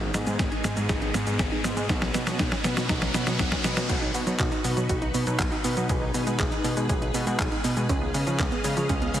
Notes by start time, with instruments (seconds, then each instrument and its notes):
Already playing: analog synth bass G#1, string machine B3 D#4 G#4, riser
0.02 synth arpeggio sound D#4
0.14 analog synth bass G#2, synth arpeggio sound B3, snare, closed hi-hat, cabasa
0.27 analog synth bass G#2, synth arpeggio sound G#3, closed hi-hat, cabasa
0.39 analog synth bass G#1, synth arpeggio sound G#4, kick, snare, closed hi-hat, cabasa
0.52 synth arpeggio sound D#4, closed hi-hat
0.64 analog synth bass G#2, synth arpeggio sound B3, snare, closed hi-hat, cabasa
0.77 analog synth bass G#2, synth arpeggio sound G#3, closed hi-hat, cabasa
0.89 analog synth bass G#1, synth arpeggio sound G#4, kick, snare, closed hi-hat, cabasa
1.02 synth arpeggio sound D#4, closed hi-hat
1.14 analog synth bass G#2, synth arpeggio sound B3, snare, closed hi-hat, cabasa
1.27 analog synth bass G#2, synth arpeggio sound G#3, closed hi-hat, cabasa
1.39 analog synth bass G#1, synth arpeggio sound G#4, kick, snare, closed hi-hat, cabasa
1.52 synth arpeggio sound D#4
1.64 analog synth bass G#2, synth arpeggio sound B3, snare, closed hi-hat, cabasa
1.77 analog synth bass G#2, synth arpeggio sound G#3, closed hi-hat, cabasa
1.89 analog synth bass B1, synth arpeggio sound D#4, string machine B4 C#5 D#5 F#5, kick, snare, closed hi-hat, cabasa
2.02 synth arpeggio sound C#4, snare
2.14 analog synth bass B2, synth arpeggio sound B3, snare, closed hi-hat, cabasa
2.27 analog synth bass B2, synth arpeggio sound F#3, snare, closed hi-hat, cabasa
2.39 analog synth bass B1, synth arpeggio sound D#4, kick, snare, closed hi-hat, cabasa
2.52 synth arpeggio sound C#4, snare, closed hi-hat
2.64 analog synth bass B2, synth arpeggio sound B3, snare, closed hi-hat, cabasa
2.77 analog synth bass B2, synth arpeggio sound F#3, snare, closed hi-hat, cabasa
2.89 analog synth bass B1, synth arpeggio sound D#4, kick, snare, closed hi-hat, cabasa
3.02 synth arpeggio sound C#4, snare, closed hi-hat
3.14 analog synth bass B2, synth arpeggio sound B3, snare, closed hi-hat, cabasa
3.27 analog synth bass B2, synth arpeggio sound F#3, snare, closed hi-hat, cabasa
3.39 analog synth bass B1, synth arpeggio sound D#4, kick, snare, closed hi-hat, cabasa
3.52 synth arpeggio sound C#4, kick, snare
3.64 analog synth bass B2, synth arpeggio sound B3, snare, closed hi-hat, cabasa
3.77 analog synth bass B2, synth arpeggio sound F#3, snare, closed hi-hat, cabasa
3.89 analog synth bass B1, string machine D#4 F#4 B4, synth arpeggio sound F#4, kick, closed hi-hat, crash, cabasa
4.02 synth arpeggio sound D#4
4.14 analog synth bass B2, synth arpeggio sound B3, open hi-hat, cabasa
4.27 analog synth bass B2, synth arpeggio sound F#3, closed hi-hat, cabasa
4.39 analog synth bass B1, synth arpeggio sound F#4, kick, clap, closed hi-hat, cabasa
4.52 synth arpeggio sound D#4, closed hi-hat
4.64 analog synth bass B2, synth arpeggio sound B3, open hi-hat, cabasa
4.77 analog synth bass B2, synth arpeggio sound F#3, closed hi-hat, cabasa
4.89 analog synth bass B1, synth arpeggio sound F#4, kick, closed hi-hat, cabasa
5.02 synth arpeggio sound D#4, closed hi-hat
5.14 analog synth bass B2, synth arpeggio sound B3, open hi-hat, cabasa
5.27 analog synth bass B2, synth arpeggio sound F#3, closed hi-hat, cabasa
5.39 analog synth bass B1, synth arpeggio sound F#4, kick, clap, closed hi-hat, cabasa
5.52 synth arpeggio sound D#4, closed hi-hat
5.64 analog synth bass B2, synth arpeggio sound B3, open hi-hat, cabasa
5.77 analog synth bass B2, synth arpeggio sound F#3, closed hi-hat, cabasa
5.89 analog synth bass B1, synth arpeggio sound G#4, string machine G#4, kick, closed hi-hat, cabasa
6.02 synth arpeggio sound D#4
6.14 analog synth bass B2, synth arpeggio sound B3, open hi-hat, cabasa
6.27 analog synth bass B2, synth arpeggio sound G#3, closed hi-hat, cabasa
6.39 analog synth bass B1, synth arpeggio sound G#4, kick, clap, closed hi-hat, cabasa
6.52 synth arpeggio sound D#4, closed hi-hat
6.64 analog synth bass B2, synth arpeggio sound B3, open hi-hat, cabasa
6.77 analog synth bass B2, synth arpeggio sound G#3, closed hi-hat, cabasa
6.89 analog synth bass B1, synth arpeggio sound G#4, kick, closed hi-hat, cabasa
7.02 synth arpeggio sound D#4, closed hi-hat
7.14 analog synth bass B2, synth arpeggio sound B3, open hi-hat, cabasa
7.27 analog synth bass B2, synth arpeggio sound G#3, closed hi-hat, cabasa
7.39 analog synth bass B1, synth arpeggio sound G#4, kick, clap, closed hi-hat, cabasa
7.52 synth arpeggio sound D#4, closed hi-hat
7.64 analog synth bass B2, synth arpeggio sound B3, open hi-hat, cabasa
7.77 analog synth bass B2, synth arpeggio sound G#3, closed hi-hat, cabasa
7.89 analog synth bass C#2, string machine C#4 D#5 F5, synth arpeggio sound C#4, kick, closed hi-hat, cabasa
8.02 synth arpeggio sound B3
8.14 analog synth bass C#3, synth arpeggio sound G#3, open hi-hat, cabasa
8.27 analog synth bass C#3, synth arpeggio sound F3, closed hi-hat, cabasa
8.39 analog synth bass C#2, synth arpeggio sound C#4, kick, clap, closed hi-hat, cabasa
8.52 synth arpeggio sound B3, closed hi-hat
8.64 analog synth bass C#3, synth arpeggio sound G#3, open hi-hat, cabasa
8.77 analog synth bass C#3, synth arpeggio sound F3, closed hi-hat, cabasa
8.89 analog synth bass C#2, synth arpeggio sound C#4, kick, closed hi-hat, cabasa
9.02 synth arpeggio sound B3, closed hi-hat
9.14 analog synth bass C#3, synth arpeggio sound G#3, open hi-hat, cabasa